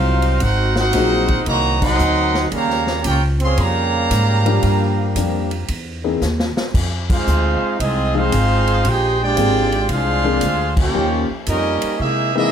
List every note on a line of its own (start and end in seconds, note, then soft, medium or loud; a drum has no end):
0.00 0.40 C2 loud
0.00 0.42 F#3 medium
0.00 0.40 C4 medium
0.00 0.41 D#4 medium
0.00 0.42 F4 medium
0.00 0.40 A#4 medium
0.00 0.42 C5 medium
0.00 0.42 F5 loud
0.22 ride medium
0.40 0.92 G#1 medium
0.40 0.75 C4 medium
0.40 0.74 D#4 medium
0.40 0.77 D#4 medium
0.40 0.75 F#4 medium
0.40 0.77 A#4 medium
0.40 0.77 C5 medium
0.40 0.77 F#5 loud
0.40 kick soft
0.40 ride medium
0.76 1.43 C4 medium
0.76 1.42 D#4 medium
0.76 1.44 D#4 medium
0.76 1.43 F#4 medium
0.76 1.44 A#4 medium
0.76 1.44 C5 loud
0.76 1.44 F#5 loud
0.76 snare medium
0.93 1.45 A#1 loud
0.93 1.26 F#3 medium
0.93 1.26 A#3 medium
0.93 1.26 C4 medium
0.93 1.26 D#4 medium
0.93 1.26 G#4 medium
0.93 kick soft
0.93 snare soft
0.93 hi-hat pedal medium
0.93 ride medium
1.28 kick medium
1.28 ride medium
1.46 1.98 C2 medium
1.46 1.79 D#3 medium
1.46 1.78 F#3 loud
1.46 1.79 A#3 loud
1.46 1.80 F#4 medium
1.46 1.80 C5 medium
1.46 1.80 D#5 medium
1.46 1.80 A#5 loud
1.46 kick soft
1.46 ride medium
1.79 2.47 F#3 loud
1.79 2.47 C4 loud
1.79 2.47 D#4 loud
1.79 2.48 A#4 loud
1.79 2.49 D#5 loud
1.79 2.49 F#5 loud
1.79 2.49 C6 loud
1.79 kick loud
1.79 crash medium
1.99 2.51 D2 loud
1.99 hi-hat pedal medium
2.35 snare medium
2.50 3.03 D#2 loud
2.50 3.00 C#3 medium
2.50 3.00 G3 medium
2.50 3.00 A#3 medium
2.50 kick soft
2.50 ride medium
2.54 3.02 G4 medium
2.54 3.03 C#5 loud
2.54 3.03 F5 loud
2.54 3.03 A#5 loud
2.70 snare soft
2.87 snare medium
3.01 3.56 C#2 loud
3.01 3.17 A#3 medium
3.01 3.17 C#4 medium
3.01 3.18 G4 medium
3.01 kick soft
3.01 hi-hat pedal medium
3.01 ride medium
3.07 3.22 F4 medium
3.07 3.22 A#4 medium
3.07 3.23 C#5 medium
3.07 3.22 G5 loud
3.39 3.56 C4 medium
3.39 ride medium
3.43 3.58 G#4 medium
3.43 3.58 C#5 medium
3.43 3.58 F5 medium
3.43 3.58 C6 loud
3.57 4.09 F2 medium
3.57 4.63 C#3 medium
3.57 5.68 G3 loud
3.57 5.69 A#3 loud
3.57 5.70 G4 medium
3.57 4.65 C#5 medium
3.57 5.70 F5 medium
3.57 5.70 A#5 loud
3.57 kick soft
3.57 ride medium
4.11 4.62 G#2 loud
4.11 kick soft
4.11 hi-hat pedal medium
4.11 ride medium
4.46 5.12 F3 medium
4.46 5.13 G3 medium
4.46 5.12 A#3 medium
4.46 5.13 D4 medium
4.46 5.13 G4 medium
4.46 ride medium
4.63 5.14 G2 medium
4.63 kick soft
4.63 ride medium
5.15 5.67 F2 loud
5.15 5.48 F3 medium
5.15 5.48 G3 medium
5.15 5.48 A#3 medium
5.15 5.48 D4 medium
5.15 5.48 G4 medium
5.15 kick soft
5.15 hi-hat pedal medium
5.15 ride medium
5.51 ride medium
5.68 6.20 E2 medium
5.68 kick soft
5.68 ride medium
6.04 6.20 E3 medium
6.04 6.20 A#3 medium
6.04 6.20 C4 medium
6.04 6.20 D#4 medium
6.04 6.20 G#4 medium
6.21 6.54 D#2 loud
6.21 snare medium
6.21 hi-hat pedal medium
6.40 snare medium
6.57 muted upright bass stroke soft
6.57 snare loud
6.74 7.25 F2 medium
6.74 kick medium
6.74 crash loud
7.10 7.76 G#3 medium
7.10 7.76 C4 medium
7.10 7.77 D#4 medium
7.10 7.76 F4 medium
7.10 7.76 G#4 medium
7.10 7.76 C5 medium
7.10 7.76 F5 medium
7.10 kick loud
7.10 crash medium
7.26 7.60 D2 loud
7.26 hi-hat pedal medium
7.79 8.31 C2 medium
7.79 8.13 G#3 medium
7.79 8.13 C4 medium
7.79 8.15 C4 medium
7.79 8.14 D#4 medium
7.79 8.15 F4 medium
7.79 8.15 G#4 medium
7.79 8.15 D#5 medium
7.79 kick soft
7.79 ride medium
8.14 8.30 F3 medium
8.14 8.84 G#3 medium
8.14 8.30 G#3 medium
8.14 8.85 C4 loud
8.14 8.30 C4 medium
8.14 8.30 D#4 medium
8.14 8.86 D#4 loud
8.14 8.85 F4 medium
8.14 8.31 G#4 medium
8.14 8.86 G#4 medium
8.14 8.86 C5 loud
8.14 8.86 F5 loud
8.32 8.83 G#1 loud
8.32 kick soft
8.32 hi-hat pedal medium
8.32 ride medium
8.67 ride medium
8.84 9.36 A#1 loud
8.84 9.19 G4 medium
8.84 9.21 G#4 loud
8.84 kick soft
8.84 ride medium
8.88 9.22 D#4 loud
8.88 9.22 C5 loud
8.88 9.22 G5 loud
9.21 9.86 G#3 loud
9.21 9.86 D4 loud
9.21 9.88 F4 loud
9.21 9.86 G4 loud
9.21 9.88 C5 loud
9.21 9.88 D5 loud
9.21 9.88 G5 loud
9.37 9.88 G#1 loud
9.37 9.69 F3 medium
9.37 9.69 A#3 medium
9.37 9.68 C4 medium
9.37 9.68 D4 medium
9.37 9.69 G#4 medium
9.37 kick soft
9.37 hi-hat pedal medium
9.37 ride medium
9.72 ride medium
9.89 10.41 C2 medium
9.89 10.74 G#3 loud
9.89 10.74 D4 loud
9.89 10.74 F4 medium
9.89 kick soft
9.89 ride medium
9.93 10.75 D4 medium
9.93 10.75 G#4 loud
9.93 10.75 C5 medium
9.93 10.75 F5 loud
10.24 10.40 F3 medium
10.24 10.40 A#3 medium
10.24 10.40 C4 medium
10.24 10.41 D4 medium
10.24 10.41 G#4 medium
10.41 10.93 D2 loud
10.41 kick soft
10.41 hi-hat pedal medium
10.41 ride medium
10.77 11.27 A#3 medium
10.77 11.28 C#4 medium
10.77 11.27 G4 medium
10.77 11.28 A#4 medium
10.77 kick loud
10.77 crash medium
10.81 11.28 F4 medium
10.81 11.28 C#5 medium
10.81 11.28 G5 medium
10.94 11.27 D#2 medium
10.94 11.26 F3 medium
10.94 11.26 A#3 medium
10.94 11.26 C#4 medium
10.94 11.26 D#4 medium
10.94 11.26 G4 medium
11.30 muted upright bass stroke soft
11.46 11.80 F2 loud
11.46 11.96 G3 medium
11.46 11.95 A#3 medium
11.46 11.97 C#4 medium
11.46 11.95 D#4 medium
11.46 11.97 G4 medium
11.46 11.97 A#4 medium
11.46 11.97 D#5 loud
11.46 kick soft
11.46 hi-hat pedal medium
11.46 ride medium
11.81 muted upright bass stroke soft
11.81 ride medium
11.99 12.51 C3 medium
11.99 12.33 G#3 medium
11.99 12.33 A#3 medium
11.99 12.36 A#3 medium
11.99 12.36 D#4 medium
11.99 12.34 E4 medium
11.99 12.36 G#4 medium
11.99 12.36 E5 loud
11.99 kick soft
12.34 12.51 E3 medium
12.34 12.52 G#3 medium
12.34 12.52 A#3 loud
12.34 12.51 A#3 medium
12.34 12.52 A#3 loud
12.34 12.51 C4 medium
12.34 12.51 D#4 medium
12.34 12.52 E4 medium
12.34 12.51 G#4 medium
12.34 12.52 G#4 loud
12.34 12.52 D#5 medium
12.34 12.52 E5 loud